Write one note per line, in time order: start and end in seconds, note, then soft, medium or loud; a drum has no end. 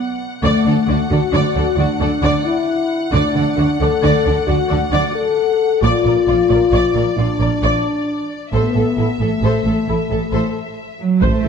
0.00 0.20 B3 medium
0.00 0.41 F#5 soft
0.42 0.51 D2 medium
0.42 0.50 D3 medium
0.42 1.06 A3 medium
0.42 0.64 D5 medium
0.42 0.65 D5 medium
0.42 5.78 F#5 medium
0.65 0.73 D2 soft
0.65 0.73 D3 soft
0.65 0.76 A4 soft
0.65 0.73 D5 soft
0.87 0.97 D2 soft
0.87 0.95 D3 soft
0.87 0.98 F#4 soft
0.87 0.97 D5 soft
1.10 1.19 D2 soft
1.10 1.18 D3 soft
1.10 1.76 F#4 medium
1.10 1.20 A4 soft
1.10 1.19 D5 soft
1.33 1.41 D2 medium
1.33 1.41 D3 medium
1.33 1.54 D5 soft
1.33 1.54 D5 medium
1.55 1.63 D2 soft
1.55 1.64 D3 soft
1.55 1.64 A4 soft
1.55 1.64 D5 soft
1.77 1.86 D2 soft
1.77 1.85 D3 soft
1.77 2.45 D4 medium
1.77 1.87 F#4 soft
1.77 1.85 D5 soft
1.99 2.08 D2 soft
1.99 2.07 D3 soft
1.99 2.09 A4 soft
1.99 2.09 D5 soft
2.22 2.30 D2 medium
2.22 2.30 D3 medium
2.22 2.44 D5 medium
2.22 2.45 D5 medium
2.44 3.12 E4 medium
3.12 3.20 D2 medium
3.12 3.20 D3 medium
3.12 3.78 D4 medium
3.12 3.34 D5 medium
3.35 3.43 D2 soft
3.35 3.43 D3 soft
3.35 3.45 A4 soft
3.35 3.43 D5 soft
3.56 3.65 D2 soft
3.56 3.64 D3 soft
3.56 3.66 F#4 soft
3.56 3.67 D5 soft
3.80 3.88 D2 soft
3.80 3.88 D3 soft
3.80 4.46 A4 medium
3.80 3.90 A4 soft
3.80 3.89 D5 soft
4.02 4.10 D2 medium
4.02 4.11 D3 medium
4.02 4.23 D5 medium
4.02 4.24 D5 medium
4.25 4.33 D2 soft
4.25 4.33 D3 soft
4.25 4.35 A4 soft
4.25 4.33 D5 soft
4.47 4.55 D2 soft
4.47 4.56 D3 soft
4.47 5.13 F#4 medium
4.47 4.56 F#4 soft
4.47 4.55 D5 soft
4.69 4.78 D2 soft
4.69 4.78 D3 soft
4.69 4.78 A4 soft
4.69 4.77 D5 soft
4.92 5.00 D2 medium
4.92 5.00 D3 medium
4.92 5.13 D5 medium
5.14 5.81 A4 medium
5.82 5.90 A#1 medium
5.82 5.90 A#2 medium
5.82 7.17 F4 medium
5.82 6.03 D5 medium
5.82 6.04 D5 medium
5.82 8.49 D5 medium
6.05 6.13 A#1 soft
6.05 6.13 A#2 soft
6.05 6.13 A#4 soft
6.05 6.14 D5 soft
6.27 6.35 A#1 soft
6.27 6.35 A#2 soft
6.27 6.36 F4 soft
6.27 6.36 D5 soft
6.49 6.58 A#1 soft
6.49 6.57 A#2 soft
6.49 6.60 A#4 soft
6.49 6.58 D5 soft
6.71 6.80 A#1 soft
6.71 6.79 A#2 medium
6.71 6.93 D5 soft
6.71 6.94 D5 medium
6.95 7.03 A#1 soft
6.95 7.03 A#2 soft
6.95 7.04 A#4 soft
6.95 7.04 D5 soft
7.17 7.25 A#1 soft
7.17 7.25 A#2 soft
7.17 8.35 D4 medium
7.17 7.27 F4 soft
7.17 7.26 D5 soft
7.39 7.47 A#1 soft
7.39 7.47 A#2 soft
7.39 7.49 A#4 soft
7.39 7.48 D5 soft
7.62 7.70 A#1 soft
7.62 7.71 A#2 soft
7.62 7.83 D5 soft
7.62 7.83 D5 medium
8.52 8.60 A1 soft
8.52 8.60 A2 soft
8.52 9.18 B3 medium
8.52 8.73 A4 soft
8.52 8.73 C5 soft
8.52 10.98 E5 soft
8.74 8.82 A1 soft
8.74 8.82 A2 soft
8.74 8.83 A4 soft
8.97 9.05 A1 soft
8.97 9.05 A2 soft
8.97 9.06 E4 soft
8.97 9.06 A4 soft
9.19 9.27 A1 soft
9.19 9.28 A2 soft
9.19 10.55 A3 soft
9.19 9.28 A4 soft
9.19 9.29 A4 soft
9.42 9.50 A1 soft
9.42 9.51 A2 soft
9.42 9.63 A4 soft
9.42 9.63 C5 soft
9.65 9.73 A1 soft
9.65 9.73 A2 soft
9.65 9.74 A4 soft
9.87 9.95 A1 soft
9.87 9.96 A2 soft
9.87 9.97 E4 soft
9.87 9.96 A4 soft
10.10 10.18 A1 soft
10.10 10.18 A2 soft
10.10 10.18 A4 soft
10.10 10.19 A4 soft
10.32 10.40 A1 soft
10.32 10.41 A2 soft
10.32 10.53 A4 soft
10.32 10.53 C5 soft
11.00 11.21 F#3 soft
11.21 11.30 A1 soft
11.21 11.48 C3 soft
11.21 11.48 E3 soft
11.21 11.48 A3 medium
11.21 11.42 C5 soft
11.21 11.48 E5 soft
11.21 11.48 A5 soft
11.21 taiko medium
11.44 11.48 A1 soft
11.44 11.48 A4 soft